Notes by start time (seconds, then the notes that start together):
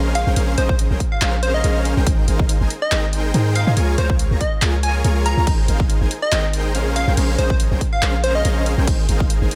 Already playing: A#1 C#4 G#4 A#4 C5 F5
0.15 F5, closed hi-hat
0.27 A#1 C#4 G#4 A#4 C5 G5
0.36 A#1 C#4 G#4 A#4 C5 F5, closed hi-hat
0.58 A#1 C#4 G#4 A#4 C5 D#5, closed hi-hat
0.69 C5, kick
0.79 closed hi-hat
0.90 A#1 C#4 G#4 A#4 C5 G5
1.00 kick, closed hi-hat
1.12 F5
1.21 A#1 C#4 G#4 A#4 C5 F5, clap, closed hi-hat
1.43 C5, closed hi-hat
1.54 D#5
1.64 A#1 C#4 G#4 A#4 C5 F5, closed hi-hat
1.85 closed hi-hat
1.97 A#1 C#4 G#4 A#4 C5 G5
2.07 G#1 D#4 G#4 A#4 C5 G5, kick, closed hi-hat
2.28 G#1 D#4 G#4 A#4 C5 F5, closed hi-hat
2.39 kick
2.49 closed hi-hat
2.61 G#1 D#4 G#4 A#4 C5 G#5
2.70 closed hi-hat
2.82 D#5
2.92 G#1 D#4 G#4 A#4 C5 D#5 G5, clap, closed hi-hat
3.13 closed hi-hat
3.34 G#2 D#4 G#4 A#4 C5 G5, closed hi-hat
3.55 F5, closed hi-hat
3.67 G#2 D#4 G#4 A#4 C5 G#5
3.77 C#2 F4 G#4 A#4 C#5 G#5, closed hi-hat
3.98 C#2 F4 G#4 A#4 C5 C#5 F5, closed hi-hat
4.10 kick
4.19 closed hi-hat
4.31 C#2 F4 G#4 A#4 C#5 A#5
4.41 D#5, kick, closed hi-hat
4.62 C#2 F4 G#4 A#4 C#5 G#5, clap, closed hi-hat
4.83 G#5, closed hi-hat
5.04 C#2 F4 G#4 A#4 C#5 G#5, closed hi-hat
5.26 A#5, closed hi-hat
5.37 C#2 F4 G#4 A#4 C#5 A#5
5.47 G#1 D#4 G#4 A#4 C5 G5, kick, closed hi-hat, crash
5.68 G#1 D#4 G#4 A#4 C5 F5, closed hi-hat
5.80 kick
5.90 closed hi-hat
6.01 G#1 D#4 G#4 A#4 C5 G#5
6.11 closed hi-hat
6.22 D#5
6.32 G#1 D#4 G#4 A#4 C5 D#5 G5, clap, closed hi-hat
6.53 closed hi-hat
6.75 A#1 C#4 G#4 A#4 C5 F5, closed hi-hat
6.96 F5, closed hi-hat
7.08 A#1 C#4 G#4 A#4 C5 G5
7.17 A#1 C#4 G#4 A#4 C5 F5, closed hi-hat, crash
7.38 A#1 C#4 G#4 A#4 C5 D#5, closed hi-hat
7.50 C5, kick
7.60 closed hi-hat
7.71 A#1 C#4 G#4 A#4 C5 G5
7.81 kick, closed hi-hat
7.93 F5
8.02 A#1 C#4 G#4 A#4 C5 F5, clap, closed hi-hat
8.24 C5, closed hi-hat
8.35 D#5
8.45 A#1 C#4 G#4 A#4 C5 F5, closed hi-hat
8.66 closed hi-hat
8.78 A#1 C#4 G#4 A#4 C5 G5
8.87 G#1 D#4 G#4 A#4 C5 G5, kick, closed hi-hat, crash
9.09 G#1 D#4 G#4 A#4 C5 F5, closed hi-hat
9.20 kick
9.30 closed hi-hat
9.42 G#1 D#4 G#4 A#4 C5 G#5
9.51 closed hi-hat